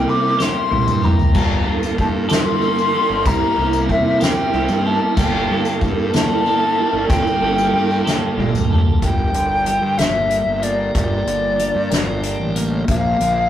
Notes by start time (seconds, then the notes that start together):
Already playing: G3 A#3 C4 E4 G4 A#4 G5
0.07 C3 D6, ride, tambourine
0.39 C3 G3 A#3 E4 G4 C6, snare, tambourine
0.70 C2 G3 A#3 E4 G4, high tom
0.86 G2, mid tom, tambourine
1.02 A#3 E4 G4 A#5, mid tom, tambourine
1.19 floor tom, tambourine
1.34 G1 G2 D3 G3 A#3 D4 G4 A4, kick, crash, tambourine, splash
1.65 G2 G3 A#3 D4 A4, ride
1.83 tambourine
1.98 G2 A5, kick, ride, tambourine
2.29 G2 D3 G3 A#3 D4 A4 C6, snare, ride, tambourine
2.61 G3 A#3 D4 A4, ride, tambourine
2.79 tambourine
2.93 G3 A#3 D4 A4, ride
3.10 G1
3.25 C2 C3 G3 A#3 C4 E4 G4 A#4 A#5, kick, ride, tambourine
3.56 C2 A#3 E4 G4, ride
3.73 tambourine
3.89 C3 E5, kick, ride, tambourine
4.20 C3 G3 A#3 E4 G4 G5, snare, ride, tambourine
4.52 C2 G3 A#3 E4 G4, ride, tambourine
4.68 G2, tambourine
4.85 A#3 E4 G4 A5, ride
5.15 G1 G2 D3 G3 A#3 D4 G4 A4 G5, kick, crash, tambourine
5.48 G2 G3 A#3 D4 A4, ride
5.65 tambourine
5.81 G2, kick, ride, tambourine
6.13 G2 D3 G3 A#3 D4 A4 A5, snare, ride, tambourine
6.45 G3 A#3 D4 A4, ride, tambourine
6.77 G3 A#3 D4 A4, ride
6.93 G1
7.09 G1 G2 D3 G3 A#3 D4 A4 G5, kick, ride, tambourine
7.27 tambourine
7.41 G1 G3 A#3 D4 A4, ride
7.58 tambourine
7.73 G2, ride
7.91 tambourine
8.05 G2 D3 G3 A#3 D4 A4, snare, tambourine
8.37 G1 G3 A#3 D4 A4, high tom
8.54 D2, mid tom, tambourine
8.70 G3 A#3 D4 A4, mid tom
8.86 floor tom
9.02 G1 G2 D4 G4 A#4 G5, kick, closed hi-hat
9.34 G1 D3, closed hi-hat
9.66 G3, closed hi-hat
9.81 G2
9.98 G1 A#3 E5, snare, closed hi-hat
10.30 D4, closed hi-hat
10.46 G1
10.62 A#3 D5, closed hi-hat
10.95 G1 G2 D5, kick, closed hi-hat
11.26 G1 D3, closed hi-hat
11.59 G3, closed hi-hat
11.75 G2
11.90 G1 A#3, snare, closed hi-hat
12.23 D4, closed hi-hat
12.40 A1
12.55 A#3, closed hi-hat
12.88 A#1 A#2 D4 F4 A#4 F5, kick, closed hi-hat
13.20 A#1 D3, closed hi-hat